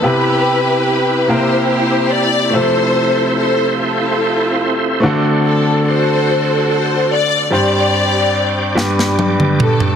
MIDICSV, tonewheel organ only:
0, 0, Header, 1, 2, 480
1, 0, Start_track
1, 0, Key_signature, 0, "major"
1, 0, Tempo, 831831
1, 21, Time_signature, 6, 3, 24, 8
1, 5746, End_track
2, 0, Start_track
2, 0, Title_t, "Tonewheel organ"
2, 0, Program_c, 0, 16
2, 20, Note_on_c, 0, 83, 68
2, 22, Note_on_c, 0, 67, 64
2, 22, Note_on_c, 0, 71, 62
2, 23, Note_on_c, 0, 76, 65
2, 734, Note_off_c, 0, 71, 0
2, 734, Note_off_c, 0, 83, 0
2, 748, Note_on_c, 0, 82, 65
2, 752, Note_on_c, 0, 72, 57
2, 1447, Note_off_c, 0, 67, 0
2, 1458, Note_off_c, 0, 82, 0
2, 1459, Note_off_c, 0, 72, 0
2, 1466, Note_on_c, 0, 72, 64
2, 1466, Note_on_c, 0, 84, 79
2, 1467, Note_on_c, 0, 69, 58
2, 1470, Note_on_c, 0, 60, 70
2, 2878, Note_off_c, 0, 76, 0
2, 2889, Note_off_c, 0, 72, 0
2, 2891, Note_off_c, 0, 60, 0
2, 2901, Note_on_c, 0, 74, 66
2, 2901, Note_on_c, 0, 78, 64
2, 4319, Note_off_c, 0, 84, 0
2, 4320, Note_off_c, 0, 69, 0
2, 4326, Note_off_c, 0, 78, 0
2, 4337, Note_on_c, 0, 79, 62
2, 4339, Note_on_c, 0, 72, 67
2, 4340, Note_on_c, 0, 86, 73
2, 5052, Note_off_c, 0, 72, 0
2, 5062, Note_on_c, 0, 67, 59
2, 5746, Note_off_c, 0, 67, 0
2, 5746, Note_off_c, 0, 74, 0
2, 5746, Note_off_c, 0, 79, 0
2, 5746, Note_off_c, 0, 86, 0
2, 5746, End_track
0, 0, End_of_file